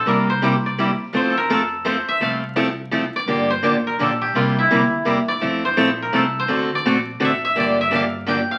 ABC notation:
X:1
M:3/4
L:1/16
Q:"Swing" 1/4=168
K:F
V:1 name="Koto"
B2 c4 d4 z2 | c3/2 A/2 B2 A4 c2 e2 | f8 z2 d2- | d2 c4 B2 A2 G2 |
F2 E6 z2 d2- | d2 c4 B2 A2 c2- | c2 d6 e2 e2 | d2 e2 f4 g2 f2 |]
V:2 name="Steel-string acoustic guitar"
[C,G,B,EG]2 z2 [C,G,B,EG] z3 [C,G,B,EG] z3 | [F,A,CEA]2 z2 [F,A,CEA] z3 [F,A,CEA] z3 | [F,A,CEA]2 z2 [F,A,CEA] z3 [F,A,CEA] z3 | [D,F,B,DG]2 z2 [D,F,B,DG] z3 [D,F,B,DG] z3 |
[C,G,B,EG]2 z2 [C,G,B,EG] z3 [C,G,B,EG] z3 | [F,A,CEA]2 z2 [F,A,CEA] z3 [F,A,CEA] z3 | [D,A,C^FA]2 z2 [D,A,CFA] z3 [D,A,CFA] z3 | [D,F,B,DG]2 z2 [D,F,B,DG] z3 [D,F,B,DG] z3 |]
V:3 name="Upright bass" clef=bass
C,,12 | F,,12 | C,,12 | G,,,4 A,,,4 B,,,4 |
C,,4 z4 E,,4 | F,,4 B,,,4 C,,4 | D,,4 B,,,4 A,,,4 | G,,,12 |]